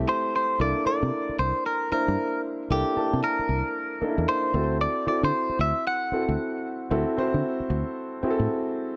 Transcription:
0.00 0.61 A3 loud
0.00 0.61 C4 medium
0.00 0.60 E4 medium
0.00 0.61 G4 loud
0.09 0.35 C5 medium
0.36 0.61 C5 loud
0.59 0.72 C2 loud
0.59 0.83 A#3 medium
0.59 0.84 D4 medium
0.59 0.84 E4 medium
0.59 0.84 A4 medium
0.59 0.86 D5 loud
0.86 1.80 A#3 medium
0.86 1.80 D4 medium
0.86 1.81 E4 medium
0.86 1.81 A4 medium
0.86 1.39 D5 loud
0.86 muted fingered electric bass stroke soft
1.03 1.10 C3 loud
1.29 muted fingered electric bass stroke soft
1.39 1.51 C2 medium
1.39 1.66 C5 loud
1.66 1.90 A#4 medium
1.91 2.62 A#3 medium
1.91 2.63 D4 medium
1.91 2.63 E4 medium
1.91 2.41 A#4 medium
1.91 2.63 C5 medium
1.91 muted fingered electric bass stroke soft
2.08 2.15 G2 loud
2.70 2.82 C2 loud
2.70 2.94 A#3 medium
2.70 2.94 D4 medium
2.70 2.94 E4 medium
2.70 3.20 G4 medium
2.70 2.95 A4 medium
2.96 3.90 A#3 medium
2.96 3.91 D4 medium
2.96 3.91 E4 medium
2.96 3.91 A5 medium
2.96 muted fingered electric bass stroke soft
3.13 3.20 C3 medium
3.24 4.28 A#4 medium
3.39 muted fingered electric bass stroke soft
3.49 3.61 C2 medium
4.01 4.54 A#3 medium
4.01 4.54 D4 medium
4.01 4.10 D#4 medium
4.01 4.53 A4 medium
4.01 muted fingered electric bass stroke soft
4.08 4.52 E4 medium
4.18 4.25 E2 medium
4.29 4.77 C5 loud
4.53 4.86 D2 loud
4.53 5.01 C4 medium
4.53 5.02 E4 medium
4.53 5.02 F#4 medium
4.53 5.02 A4 medium
4.81 5.07 D5 loud
5.06 6.01 C4 medium
5.06 6.01 E4 medium
5.06 6.01 F#4 medium
5.06 6.02 A4 medium
5.06 5.24 D5 medium
5.06 muted fingered electric bass stroke soft
5.23 5.30 D3 loud
5.23 5.61 C5 loud
5.49 muted fingered electric bass stroke soft
5.59 5.71 D2 loud
5.59 5.87 E5 loud
5.87 8.46 F#5 loud
6.12 6.83 C4 medium
6.12 6.84 E4 medium
6.12 6.84 F#4 medium
6.12 6.84 A4 medium
6.12 muted fingered electric bass stroke soft
6.29 6.36 D2 medium
6.91 7.03 D2 loud
6.91 7.15 C4 medium
6.91 7.15 E4 medium
6.91 7.15 F#4 medium
6.91 7.15 A4 loud
7.17 8.12 C4 medium
7.17 8.12 E4 medium
7.17 8.12 F#4 medium
7.17 8.12 C5 loud
7.17 muted fingered electric bass stroke soft
7.34 7.41 D3 loud
7.60 muted fingered electric bass stroke soft
7.70 7.82 D2 loud
8.23 8.94 C4 medium
8.23 8.94 E4 medium
8.23 8.94 F#4 medium
8.23 8.31 G#4 medium
8.23 muted fingered electric bass stroke soft
8.30 8.96 A4 loud
8.40 8.47 A2 medium

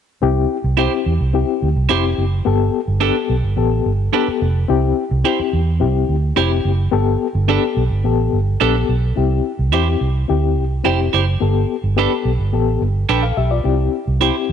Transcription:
0.22 0.45 C2 loud
0.22 0.56 C4 medium
0.22 0.56 E4 medium
0.22 0.56 G4 loud
0.64 0.86 C2 medium
0.77 1.11 C4 medium
0.77 0.92 E4 medium
0.77 1.12 E4 medium
0.77 0.92 G4 medium
0.77 1.12 G4 medium
0.77 0.92 C5 medium
1.06 1.17 E2 medium
1.20 1.42 C2 medium
1.33 1.67 C4 medium
1.33 1.68 E4 medium
1.33 1.68 G4 medium
1.62 1.73 D2 medium
1.76 1.87 C2 medium
1.89 2.12 F1 medium
1.89 2.23 C4 medium
1.89 2.03 E4 medium
1.89 2.24 E4 medium
1.89 2.04 G4 medium
1.89 2.24 G4 medium
1.89 2.04 C5 medium
2.18 2.40 F#1 medium
2.45 2.68 G1 medium
2.45 2.79 B3 medium
2.45 2.80 G4 medium
2.45 2.80 A4 loud
2.88 3.10 G1 medium
3.00 3.35 B3 medium
3.00 3.15 D4 medium
3.00 3.35 G4 medium
3.00 3.15 A4 medium
3.00 3.36 A4 medium
3.00 3.16 B4 medium
3.30 3.40 B1 medium
3.43 3.54 G1 medium
3.57 3.79 A1 medium
3.57 3.91 B3 medium
3.57 3.91 G4 medium
3.57 3.91 A4 medium
3.86 4.08 G1 medium
4.12 4.47 B3 medium
4.12 4.27 D4 medium
4.12 4.47 G4 medium
4.12 4.27 A4 medium
4.12 4.47 A4 medium
4.12 4.27 B4 medium
4.28 muted fingered electric bass stroke soft
4.42 4.63 F1 medium
4.68 4.91 C2 medium
4.68 5.03 C4 loud
4.68 5.03 E4 medium
4.68 5.03 G4 loud
5.11 5.22 C2 medium
5.24 5.58 C4 medium
5.24 5.59 E4 medium
5.24 5.39 E4 medium
5.24 5.39 G4 medium
5.24 5.59 G4 medium
5.24 5.39 C5 medium
5.39 muted fingered electric bass stroke soft
5.53 5.82 E2 medium
5.80 6.03 C2 medium
5.80 6.14 C4 medium
5.80 6.15 E4 medium
5.80 6.15 G4 medium
6.09 6.31 D2 medium
6.36 6.59 F1 medium
6.36 6.70 C4 medium
6.36 6.71 E4 medium
6.36 6.51 E4 medium
6.36 6.51 G4 medium
6.36 6.71 G4 medium
6.36 6.51 C5 medium
6.65 6.87 F#1 medium
6.91 7.15 G1 loud
6.91 7.26 B3 medium
6.91 7.26 G4 medium
6.91 7.27 A4 loud
7.35 7.57 G1 medium
7.48 7.82 B3 medium
7.48 7.63 D4 medium
7.48 7.83 G4 medium
7.48 7.63 A4 medium
7.48 7.83 A4 medium
7.48 7.63 B4 medium
7.77 7.88 B1 medium
7.91 8.02 G1 medium
8.04 8.27 A1 medium
8.04 8.38 B3 medium
8.04 8.39 G4 medium
8.04 8.39 A4 medium
8.33 8.55 G1 medium
8.60 8.83 A#1 medium
8.60 8.95 B3 medium
8.60 8.75 D4 medium
8.60 8.95 G4 medium
8.60 8.75 A4 medium
8.60 8.95 A4 medium
8.60 8.75 B4 medium
8.89 9.11 B1 medium
9.16 9.39 C2 medium
9.16 9.50 C4 medium
9.16 9.51 E4 medium
9.16 9.51 G4 medium
9.59 9.73 C2 medium
9.72 9.95 E2 medium
9.72 10.06 C4 medium
9.72 9.87 E4 medium
9.72 10.07 E4 medium
9.72 9.87 G4 medium
9.72 10.07 G4 medium
9.72 9.87 C5 medium
10.01 10.23 C2 medium
10.28 10.58 D2 medium
10.28 10.63 C4 medium
10.28 10.63 E4 medium
10.28 10.63 G4 medium
10.58 10.80 C2 medium
10.84 11.07 F1 medium
10.84 11.18 C4 medium
10.84 11.19 E4 medium
10.84 10.99 E4 medium
10.84 11.19 G4 medium
10.84 10.99 G4 medium
10.84 11.00 C5 medium
11.13 11.36 F#1 medium
11.13 11.24 E4 medium
11.13 11.24 G4 medium
11.13 11.25 C5 medium
11.40 11.64 G1 loud
11.40 11.75 B3 medium
11.40 11.75 G4 medium
11.40 11.76 A4 medium
11.84 12.05 G1 medium
11.96 12.31 B3 medium
11.96 12.12 D4 medium
11.96 12.31 G4 medium
11.96 12.31 A4 medium
11.96 12.12 A4 medium
11.96 12.12 B4 medium
12.25 12.36 B1 medium
12.39 12.50 G1 medium
12.53 12.76 A1 medium
12.53 12.87 B3 medium
12.53 12.81 G4 medium
12.53 12.82 A4 medium
12.82 13.03 G1 medium
13.09 13.31 A#1 medium
13.09 13.23 D4 medium
13.09 13.23 A4 medium
13.09 13.23 B4 soft
13.09 13.24 B4 medium
13.09 13.23 G5 medium
13.23 13.37 A4 medium
13.23 13.36 F5 medium
13.37 13.59 B1 medium
13.37 13.51 G4 medium
13.37 13.51 E5 medium
13.51 13.78 F4 soft
13.51 13.78 D5 medium
13.64 13.87 C2 medium
13.64 13.98 C4 medium
13.64 13.99 E4 medium
13.64 13.99 G4 medium
14.07 14.29 C2 medium
14.20 14.52 C4 medium
14.20 14.52 E4 medium
14.20 14.35 E4 medium
14.20 14.52 G4 medium
14.20 14.35 G4 medium
14.20 14.36 C5 medium

